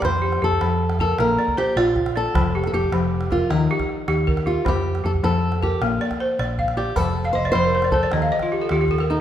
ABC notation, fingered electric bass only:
X:1
M:12/8
L:1/8
Q:3/8=104
K:Fmix
V:1 name="Fingered electric bass" clef=bass
F,,2 F,, F,,3 B,,, z2 B,,,3 | F,,,2 F,,, F,,,3 E,, z2 E,,3 | F,,2 F,, F,,3 B,,, z2 B,,,3 | F,,,2 F,,, F,,,3 E,, z2 E,,3 |]